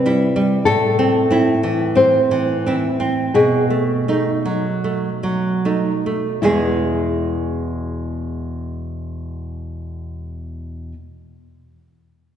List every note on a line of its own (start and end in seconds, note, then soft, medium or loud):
0.00 0.63 C3 soft
0.00 0.24 C4 soft
0.00 0.62 B4 medium
0.06 0.33 G3 soft
0.06 0.33 E4 soft
0.36 0.67 G3 soft
0.65 3.31 A2 soft
0.65 1.93 A4 medium
0.99 1.29 C4 soft
1.31 1.60 C4 soft
1.31 1.61 E4 soft
1.63 2.18 E3 soft
1.95 2.51 C4 soft
1.95 3.31 C5 medium
2.31 2.86 E3 soft
2.66 2.97 C4 soft
2.66 2.98 E4 soft
3.00 3.35 C4 soft
3.34 6.40 B2 soft
3.34 4.03 G#4 soft
3.70 4.07 A3 soft
4.08 4.42 A3 soft
4.08 4.42 D#4 soft
4.45 5.08 F#3 soft
4.84 5.49 A3 soft
5.23 5.91 F#3 soft
5.65 6.02 A3 soft
5.65 6.02 D#4 soft
6.06 6.43 A3 soft
6.42 10.93 E2 soft
6.42 10.93 B2 soft
6.42 10.93 G#3 soft
6.42 10.94 B3 soft
6.42 10.92 E4 soft
6.42 10.94 E4 soft
6.42 10.95 G#4 soft